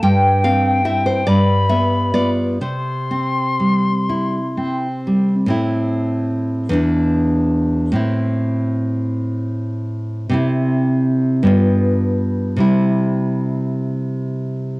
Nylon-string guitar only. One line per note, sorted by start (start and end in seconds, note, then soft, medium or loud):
0.02 1.23 G2 medium
0.02 0.42 G5 medium
0.44 0.84 C4 medium
0.44 0.83 F5 medium
0.85 1.22 C4 soft
0.85 1.23 E4 soft
0.85 1.05 E5 medium
1.06 1.27 C5 medium
1.27 2.57 G2 medium
1.27 1.68 D5 medium
1.69 2.13 B3 soft
1.69 2.12 E5 medium
2.14 2.57 B3 soft
2.14 2.57 F4 medium
2.14 2.59 D5 medium
2.61 5.47 C3 medium
2.61 5.02 C5 medium
3.11 3.89 C4 soft
3.60 4.38 G3 soft
4.09 4.87 E4 soft
4.57 5.34 C4 soft
5.07 5.51 G3 soft
5.46 6.69 A2 medium
5.46 6.70 C4 medium
5.46 6.71 E4 medium
6.69 7.91 E2 medium
6.69 7.92 D4 medium
6.73 7.93 E4 medium
7.92 10.29 A2 medium
7.92 10.29 C4 medium
7.92 10.30 E4 soft
10.29 11.42 C3 medium
10.29 11.43 C4 medium
10.33 11.44 E4 medium
11.43 12.56 G2 medium
11.43 12.57 B3 medium
11.43 12.58 F4 medium
12.57 14.80 C3 medium
12.57 14.80 G3 medium
12.57 14.80 E4 medium